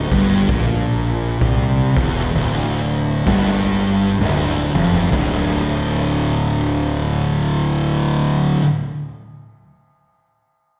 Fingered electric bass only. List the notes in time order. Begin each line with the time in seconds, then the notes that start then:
0.11 G1
0.49 A#1
1.42 C2
1.97 E1
2.34 D1
3.27 G1
4.20 D1
4.74 F1
5.13 D1